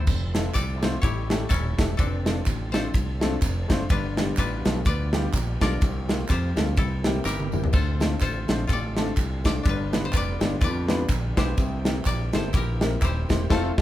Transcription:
Already playing: koto E4 A4 C5
0.07 fingered electric bass F1, tonewheel organ F3 C4 E4 A4, kick, crash, tambourine
0.34 grand piano A3 C4 E4 F4 A4, snare, ride bell, tambourine
0.54 fingered electric bass C2, koto A4 D5, kick, clap, ride bell, tambourine
0.82 grand piano A3 C4 E4 F4 C5, snare, ride bell, tambourine
1.02 fingered electric bass A1, grand piano A2, tonewheel organ G3 C#4, koto E4 G4 C#5, kick, ride bell, tambourine
1.30 grand piano A3 C#4 E4 G4 A4, snare, ride bell, tambourine
1.49 fingered electric bass D#1, koto C#4 E4 A4, kick, clap, ride bell, tambourine
1.77 fingered electric bass E1, grand piano A3 C#4 E4 G4 A4, kick, snare, ride bell, tambourine
1.97 fingered electric bass F1, tonewheel organ F3 C4 D4, koto C4 D4 A4, kick, ride bell, tambourine
2.25 grand piano A3 C4 D4 F4 A4, snare, ride bell, tambourine
2.46 fingered electric bass A1, kick, clap, ride bell, tambourine
2.72 grand piano A3 C4 D4 F4 C5, koto A4 C5, snare, ride bell, tambourine
2.94 fingered electric bass C2, kick, ride bell, tambourine
3.21 grand piano A3 C4 D4 F4 A4, snare, ride bell, tambourine
3.42 fingered electric bass F1, kick, clap, ride bell, tambourine
3.68 fingered electric bass F#1, grand piano A3 C4 D4 F4 C5, kick, snare, ride bell, tambourine
3.89 fingered electric bass G1, grand piano G2, tonewheel organ B3 D4 G4, koto D4 F4 B4, kick, ride bell, tambourine
4.17 grand piano G3 B3 D4 F4 G4, snare, ride bell, tambourine
4.37 fingered electric bass A1, koto D4 F4 B4, kick, clap, ride bell, tambourine
4.65 fingered electric bass B1, grand piano G3 B3 D4 F4 A4, snare, ride bell, tambourine
4.85 fingered electric bass D2, koto F4 B4 D5, kick, ride bell, tambourine
5.13 grand piano G3 B3 D4 F4 G4, snare, ride bell, tambourine
5.33 fingered electric bass A#1, kick, clap, ride bell, tambourine
5.60 fingered electric bass B1, grand piano G3 B3 D4 F4 A4, koto F4 A#4 D5, kick, snare, ride bell, tambourine
5.81 fingered electric bass C2, grand piano C3, tonewheel organ A#3 C4, kick, ride bell, tambourine
6.08 grand piano G3 A#3 C4 F4 G4, snare, ride bell, tambourine
6.29 fingered electric bass F2, koto F4 G4 C5, kick, clap, ride bell, tambourine
6.56 fingered electric bass D2, grand piano G3 A#3 C4 F4 A4, snare, ride bell, tambourine
6.77 fingered electric bass C2, grand piano C3, tonewheel organ E3 G4, koto E4 A4, kick, ride bell, tambourine
7.04 grand piano G3 A#3 C4 E4 G4, snare, ride bell, tambourine
7.25 fingered electric bass G1, koto E4 G4 A#4, snare, clap, tambourine
7.40 high tom
7.52 grand piano G3 A#3 C4 E4 G4, mid tom, tambourine
7.64 floor tom
7.73 fingered electric bass D2, grand piano D3, tonewheel organ D3 A3 F4, koto F4 A4 C5, kick, crash, tambourine
8.00 grand piano A3 C4 D4 F4 A4, snare, ride bell, tambourine
8.20 fingered electric bass A1, koto F4 A4 C5, kick, clap, ride bell, tambourine
8.48 fingered electric bass A#1, grand piano A3 C4 D4 F4 C5, snare, ride bell, tambourine
8.67 fingered electric bass A1, koto F4 A4, kick, ride bell, tambourine
8.73 koto D5
8.96 grand piano A3 C4 D4 F4 A4, snare, ride bell, tambourine
9.17 fingered electric bass C2, kick, clap, ride bell, tambourine
9.44 grand piano A3 C4 D4 F4 A4, koto D5, kick, snare, ride bell, tambourine
9.63 fingered electric bass G1, grand piano G2, tonewheel organ G3 B3, koto D4 F4, kick, ride bell, tambourine
9.69 koto B4
9.92 grand piano B3 D4 F4 G4 B4, snare, ride bell, tambourine
10.05 koto C5
10.12 fingered electric bass F1, koto F4 B4, kick, clap, ride bell, tambourine
10.17 koto D5
10.40 fingered electric bass G1, grand piano B3 D4 F4 G4 D5, snare, ride bell, tambourine
10.61 fingered electric bass F2, koto F4 B4 D5, kick, ride bell, tambourine
10.88 grand piano B3 D4 F4 G4 B4, snare, ride bell, tambourine
11.09 fingered electric bass A#1, kick, clap, ride bell, tambourine
11.36 fingered electric bass B1, grand piano B3 D4 F4 G4 B4, koto E4 G4 C5, kick, snare, ride bell, tambourine
11.57 fingered electric bass C2, grand piano C3, tonewheel organ E3 A#3 C4 G4, kick, ride bell, tambourine
11.84 grand piano A#3 C4 E4 G4 A#4, snare, ride bell, tambourine
12.05 fingered electric bass A#1, koto D5, kick, clap, ride bell, tambourine
12.33 fingered electric bass G1, grand piano A#3 C4 E4 G4 A4, koto C5, snare, ride bell, tambourine
12.53 fingered electric bass A#1, koto E4 G4, kick, ride bell, tambourine
12.57 koto A#4
12.80 grand piano A#3 C4 E4 G4 A#4, snare, ride bell, tambourine
13.01 fingered electric bass D#1, koto E4 G4 C5, kick, clap, ride bell, tambourine
13.28 fingered electric bass E1, grand piano A#3 C4 E4 G4 C5, kick, snare, ride bell, tambourine
13.49 fingered electric bass F1, tonewheel organ F3 A3 F4, grand piano A3 C4 E4 F4 A4, koto A4 C5 F5, kick, snare, crash
13.78 fingered electric bass F1, grand piano A3 C4 E4, kick, snare

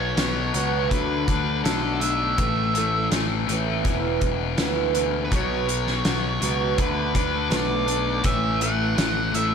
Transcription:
Already playing: picked electric bass B1, distorted electric guitar B2 F#3 B3, lead electric guitar C#5
0.17 picked electric bass B1, distorted electric guitar B2 F#3 B3, snare, closed hi-hat
0.54 picked electric bass C#2, distorted electric guitar B2 F#3 B3, closed hi-hat
0.91 picked electric bass D2, distorted electric guitar D3 A3 D4, steel-string acoustic guitar F#3, lead electric guitar B4, kick, closed hi-hat
1.28 picked electric bass D2, distorted electric guitar D3 A3 D4, steel-string acoustic guitar F#3, kick, closed hi-hat
1.64 picked electric bass B1, distorted electric guitar D3 A3 D4, steel-string acoustic guitar F#3, lead electric guitar A4, snare, closed hi-hat
2.00 distorted electric guitar D3 A3 D4, steel-string acoustic guitar F#3, lead electric guitar E5, closed hi-hat
2.37 picked electric bass A1, distorted electric guitar A2 E3 A3, kick, closed hi-hat
2.74 distorted electric guitar A2 E3 A3, closed hi-hat
3.11 picked electric bass A1, distorted electric guitar A2 E3 A3, snare, closed hi-hat
3.47 picked electric bass A1, distorted electric guitar A2 E3 A3, closed hi-hat
3.52 steel-string acoustic guitar E3
3.83 picked electric bass E1, distorted electric guitar E2 B2 E3, kick, closed hi-hat
3.87 steel-string acoustic guitar B3 E4
4.20 picked electric bass E1, distorted electric guitar E2 B2 E3, steel-string acoustic guitar B3, kick, closed hi-hat
4.56 picked electric bass D2, distorted electric guitar E2 B2 E3, steel-string acoustic guitar B3, snare, closed hi-hat
4.61 steel-string acoustic guitar E4
4.94 distorted electric guitar E2 B2 E3, steel-string acoustic guitar B3, closed hi-hat
5.25 lead electric guitar B4
5.31 picked electric bass B1, distorted electric guitar B2 F#3 B3, lead electric guitar C#5, kick, closed hi-hat
5.67 distorted electric guitar B2 F#3 B3, closed hi-hat
5.87 snare
6.05 picked electric bass B1, distorted electric guitar B2 F#3 B3, snare, closed hi-hat
6.41 picked electric bass C#2, distorted electric guitar B2 F#3 B3, closed hi-hat
6.77 picked electric bass D2, distorted electric guitar D3 A3 D4, steel-string acoustic guitar B3, lead electric guitar B4, kick, closed hi-hat
7.13 picked electric bass D2, distorted electric guitar D3 A3 D4, kick, closed hi-hat
7.50 picked electric bass B1, distorted electric guitar D3 A3 D4, steel-string acoustic guitar B3, lead electric guitar D5, snare, closed hi-hat
7.86 distorted electric guitar D3 A3 D4, closed hi-hat
8.23 picked electric bass A1, distorted electric guitar A2 E3 A3, lead electric guitar E5, kick, closed hi-hat
8.60 distorted electric guitar A2 E3 A3, lead electric guitar F#5, closed hi-hat
8.97 picked electric bass A1, distorted electric guitar A2 E3 A3, snare, closed hi-hat
9.32 picked electric bass A1, distorted electric guitar A2 E3 A3, lead electric guitar E5, closed hi-hat

